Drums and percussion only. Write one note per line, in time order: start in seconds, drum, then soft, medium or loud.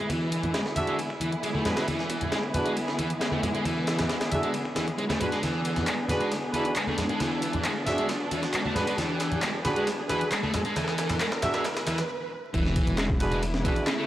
0.10 kick loud
0.10 closed hi-hat soft
0.10 ride medium
0.10 high conga loud
0.32 closed hi-hat medium
0.32 ride medium
0.43 closed hi-hat soft
0.43 high conga medium
0.43 low conga medium
0.54 snare loud
0.54 closed hi-hat soft
0.54 ride medium
0.66 snare soft
0.76 closed hi-hat medium
0.76 ride medium
0.76 high conga loud
0.76 low conga medium
0.87 closed hi-hat soft
0.99 closed hi-hat soft
0.99 ride medium
1.10 kick medium
1.20 closed hi-hat medium
1.20 ride medium
1.20 high conga medium
1.32 closed hi-hat soft
1.43 closed hi-hat soft
1.43 ride medium
1.55 high conga loud
1.65 snare loud
1.65 closed hi-hat medium
1.65 ride medium
1.65 low conga medium
1.77 snare loud
1.77 closed hi-hat soft
1.77 ride medium
1.88 kick loud
1.88 closed hi-hat soft
1.88 ride medium
1.88 high conga medium
1.99 snare soft
2.10 kick loud
2.10 closed hi-hat medium
2.10 ride medium
2.21 closed hi-hat soft
2.21 high conga medium
2.21 low conga medium
2.32 snare loud
2.32 closed hi-hat soft
2.32 ride medium
2.43 kick medium
2.54 closed hi-hat medium
2.54 ride medium
2.54 high conga medium
2.54 low conga medium
2.66 closed hi-hat soft
2.77 closed hi-hat soft
2.77 ride medium
2.88 snare medium
2.99 kick medium
2.99 closed hi-hat medium
2.99 ride medium
2.99 high conga medium
3.10 closed hi-hat soft
3.10 ride soft
3.21 snare loud
3.21 closed hi-hat soft
3.21 ride medium
3.32 high conga loud
3.43 closed hi-hat medium
3.43 ride medium
3.43 low conga medium
3.55 closed hi-hat soft
3.65 kick loud
3.65 closed hi-hat soft
3.65 ride medium
3.65 high conga medium
3.87 snare loud
3.87 closed hi-hat medium
3.87 ride medium
3.99 snare loud
3.99 closed hi-hat soft
3.99 ride medium
3.99 high conga medium
3.99 low conga medium
4.09 snare loud
4.09 closed hi-hat soft
4.09 ride medium
4.21 snare loud
4.21 ride medium
4.32 closed hi-hat medium
4.32 ride medium
4.32 high conga medium
4.32 low conga medium
4.43 closed hi-hat soft
4.54 closed hi-hat soft
4.54 ride medium
4.65 kick medium
4.76 snare loud
4.76 closed hi-hat medium
4.76 ride medium
4.76 high conga medium
4.88 kick medium
4.88 closed hi-hat soft
4.98 closed hi-hat soft
4.98 ride medium
5.10 snare loud
5.10 ride medium
5.10 high conga loud
5.21 kick loud
5.21 closed hi-hat medium
5.21 ride medium
5.21 low conga medium
5.32 snare soft
5.32 closed hi-hat soft
5.43 snare soft
5.43 closed hi-hat soft
5.43 ride medium
5.43 high conga medium
5.65 closed hi-hat medium
5.65 ride medium
5.76 snare soft
5.76 closed hi-hat soft
5.76 high conga medium
5.76 low conga medium
5.87 clap loud
5.87 closed hi-hat soft
5.87 ride medium
6.08 snare medium
6.08 closed hi-hat medium
6.08 ride medium
6.08 high conga medium
6.08 low conga medium
6.21 closed hi-hat soft
6.32 snare medium
6.32 closed hi-hat soft
6.32 ride medium
6.53 closed hi-hat medium
6.53 ride medium
6.53 high conga medium
6.65 closed hi-hat soft
6.65 ride soft
6.76 clap loud
6.76 closed hi-hat soft
6.76 ride medium
6.87 high conga medium
6.98 snare medium
6.98 closed hi-hat medium
6.98 ride medium
6.98 low conga medium
7.09 closed hi-hat soft
7.20 snare medium
7.20 closed hi-hat soft
7.20 ride medium
7.20 high conga medium
7.42 closed hi-hat medium
7.42 ride medium
7.53 closed hi-hat soft
7.53 high conga medium
7.53 low conga medium
7.64 clap loud
7.64 closed hi-hat soft
7.64 ride medium
7.87 snare medium
7.87 closed hi-hat medium
7.87 ride medium
7.87 high conga medium
7.87 low conga medium
7.98 closed hi-hat soft
8.09 snare medium
8.09 closed hi-hat soft
8.09 ride medium
8.31 closed hi-hat medium
8.31 ride medium
8.31 high conga medium
8.43 snare medium
8.43 closed hi-hat soft
8.54 clap loud
8.54 closed hi-hat soft
8.54 ride medium
8.66 high conga medium
8.76 snare medium
8.76 closed hi-hat medium
8.76 ride medium
8.76 low conga medium
8.87 closed hi-hat soft
8.87 ride medium
8.98 snare medium
8.98 closed hi-hat soft
8.98 ride medium
8.98 high conga medium
9.20 snare medium
9.20 closed hi-hat medium
9.20 ride medium
9.32 closed hi-hat soft
9.32 high conga medium
9.32 low conga medium
9.42 snare medium
9.42 clap loud
9.42 closed hi-hat soft
9.42 ride medium
9.65 snare medium
9.65 closed hi-hat medium
9.65 ride medium
9.65 high conga loud
9.65 low conga medium
9.76 closed hi-hat soft
9.87 snare medium
9.87 closed hi-hat soft
9.87 ride medium
10.09 snare medium
10.09 closed hi-hat medium
10.09 ride medium
10.09 high conga medium
10.21 closed hi-hat soft
10.21 ride soft
10.32 snare medium
10.32 clap loud
10.32 closed hi-hat soft
10.32 ride medium
10.44 high conga medium
10.54 snare medium
10.54 closed hi-hat medium
10.54 ride medium
10.54 low conga medium
10.65 closed hi-hat soft
10.76 snare medium
10.76 closed hi-hat soft
10.76 ride medium
10.76 high conga medium
10.88 snare medium
10.98 snare loud
10.98 closed hi-hat medium
10.98 ride medium
11.09 snare medium
11.09 closed hi-hat soft
11.09 ride medium
11.09 high conga medium
11.09 low conga medium
11.20 snare medium
11.20 clap loud
11.20 closed hi-hat soft
11.20 ride medium
11.32 snare medium
11.42 snare loud
11.42 closed hi-hat medium
11.42 ride medium
11.42 high conga medium
11.42 low conga medium
11.54 snare medium
11.54 closed hi-hat soft
11.64 snare loud
11.64 closed hi-hat soft
11.64 ride medium
11.77 snare medium
11.77 ride medium
11.87 snare loud
11.87 closed hi-hat medium
11.87 ride medium
11.87 high conga medium
11.98 snare medium
11.98 closed hi-hat soft
12.54 kick loud
12.54 closed hi-hat soft
12.54 ride medium
12.65 snare soft
12.76 kick loud
12.76 closed hi-hat medium
12.76 ride medium
12.87 closed hi-hat soft
12.87 high conga medium
12.87 low conga medium
12.98 snare loud
12.98 clap loud
12.98 closed hi-hat soft
12.98 ride medium
13.10 kick loud
13.20 closed hi-hat medium
13.20 ride medium
13.20 low conga medium
13.32 closed hi-hat soft
13.32 high conga medium
13.43 closed hi-hat soft
13.43 ride medium
13.54 snare medium
13.65 kick loud
13.65 closed hi-hat medium
13.65 ride medium
13.76 closed hi-hat soft
13.76 ride soft
13.87 snare loud
13.87 clap loud
13.87 closed hi-hat soft
13.87 ride medium